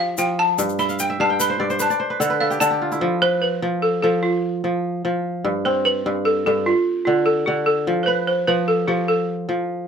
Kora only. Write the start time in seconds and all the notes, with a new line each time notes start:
Already playing: F3 G4
0.18 F3
0.58 G2
0.79 E5
0.89 F5
1.00 G5
1.10 E5
1.20 G2 F5
1.30 G5
1.40 B4
1.50 C5
1.60 G2 D5
1.70 C5
1.80 B4
1.90 D5
2.00 C5
2.10 B4
2.20 D3 A4
2.30 B4
2.41 A4
2.50 G4
2.61 D3 A4
2.71 G4
2.82 F4
2.92 E4
3.01 F3
3.22 B4
3.62 F3
4.03 F3
4.64 F3
5.05 F3
5.45 G2
5.65 C4
6.06 G2
6.47 G2
7.07 D3
7.47 D3
7.87 F3
8.08 B4
8.48 F3
8.88 F3
9.49 F3